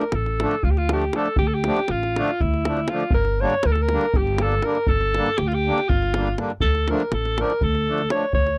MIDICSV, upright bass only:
0, 0, Header, 1, 2, 480
1, 0, Start_track
1, 0, Key_signature, -1, "minor"
1, 0, Tempo, 497925
1, 1320, Time_signature, 7, 3, 24, 8
1, 8273, End_track
2, 0, Start_track
2, 0, Title_t, "Upright bass"
2, 0, Program_c, 0, 32
2, 121, Note_on_c, 0, 33, 76
2, 419, Note_off_c, 0, 33, 0
2, 624, Note_on_c, 0, 38, 73
2, 1042, Note_off_c, 0, 38, 0
2, 1330, Note_on_c, 0, 38, 76
2, 1624, Note_off_c, 0, 38, 0
2, 1823, Note_on_c, 0, 33, 70
2, 2116, Note_off_c, 0, 33, 0
2, 2324, Note_on_c, 0, 38, 87
2, 2737, Note_off_c, 0, 38, 0
2, 3020, Note_on_c, 0, 31, 82
2, 3311, Note_off_c, 0, 31, 0
2, 3519, Note_on_c, 0, 38, 77
2, 3808, Note_off_c, 0, 38, 0
2, 4005, Note_on_c, 0, 31, 88
2, 4418, Note_off_c, 0, 31, 0
2, 4704, Note_on_c, 0, 31, 79
2, 4994, Note_off_c, 0, 31, 0
2, 5195, Note_on_c, 0, 38, 75
2, 5485, Note_off_c, 0, 38, 0
2, 5684, Note_on_c, 0, 31, 83
2, 6096, Note_off_c, 0, 31, 0
2, 6369, Note_on_c, 0, 38, 67
2, 6662, Note_off_c, 0, 38, 0
2, 6859, Note_on_c, 0, 33, 79
2, 7152, Note_off_c, 0, 33, 0
2, 7342, Note_on_c, 0, 38, 76
2, 7758, Note_off_c, 0, 38, 0
2, 8033, Note_on_c, 0, 38, 66
2, 8273, Note_off_c, 0, 38, 0
2, 8273, End_track
0, 0, End_of_file